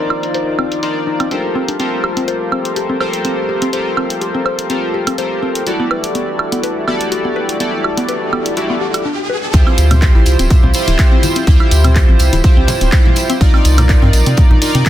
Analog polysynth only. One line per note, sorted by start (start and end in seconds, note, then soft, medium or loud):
0.00 0.80 D#4 medium
0.00 0.80 F4 medium
0.00 0.80 A#4 medium
0.00 0.80 C5 medium
0.00 0.80 D5 medium
0.83 1.28 D#4 medium
0.83 1.28 F4 medium
0.83 1.28 A#4 medium
0.83 1.28 C5 medium
0.83 1.29 D5 medium
1.31 1.77 F4 medium
1.31 1.77 G4 medium
1.31 1.77 A4 medium
1.31 1.77 A#4 medium
1.31 1.77 C5 medium
1.79 2.98 F4 medium
1.79 2.98 G4 medium
1.79 2.98 A4 medium
1.79 2.98 A#4 medium
1.79 2.98 C5 medium
3.00 3.70 F4 medium
3.00 3.70 G4 medium
3.00 3.70 A4 medium
3.00 3.70 A#4 medium
3.00 3.71 C5 loud
3.73 4.67 F4 medium
3.73 4.67 G4 medium
3.73 4.67 A4 medium
3.73 4.67 A#4 medium
3.73 4.67 C5 medium
4.70 5.16 F4 medium
4.70 5.16 G4 medium
4.70 5.16 A4 medium
4.70 5.16 A#4 medium
4.70 5.16 C5 medium
5.18 5.64 F4 medium
5.18 5.64 G4 medium
5.18 5.64 A4 medium
5.18 5.64 A#4 medium
5.18 5.64 C5 medium
5.67 6.85 E4 medium
5.67 6.85 F#4 medium
5.67 6.85 G4 medium
5.67 6.85 A4 medium
5.67 6.85 D5 medium
6.87 7.57 E4 medium
6.87 7.57 F#4 medium
6.87 7.57 G4 medium
6.87 7.58 A4 medium
6.87 7.58 D5 loud
7.60 8.54 E4 medium
7.60 8.54 F#4 medium
7.60 8.54 G4 medium
7.60 8.54 A4 medium
7.60 8.54 D5 medium
8.57 9.03 E4 medium
8.57 9.03 F#4 medium
8.57 9.03 G4 medium
8.57 9.03 A4 medium
8.57 9.03 D5 medium
9.54 10.72 E4 medium
9.54 10.72 F4 medium
9.54 10.72 G4 medium
9.54 10.72 C5 medium
10.74 11.44 E4 loud
10.74 11.45 F4 medium
10.74 11.45 G4 medium
10.74 11.45 C5 loud
11.47 12.41 E4 medium
11.47 12.41 F4 medium
11.47 12.41 G4 medium
11.47 12.41 C5 medium
12.44 12.90 E4 medium
12.44 12.90 F4 medium
12.44 12.90 G4 medium
12.44 12.90 C5 medium
12.93 13.38 C5 medium
13.41 14.59 D#4 medium
13.41 14.59 F4 medium
13.41 14.59 A#4 medium
13.41 14.59 D5 loud
14.62 14.89 D#4 medium
14.62 14.89 F4 medium
14.62 14.89 A#4 medium
14.62 14.89 D5 loud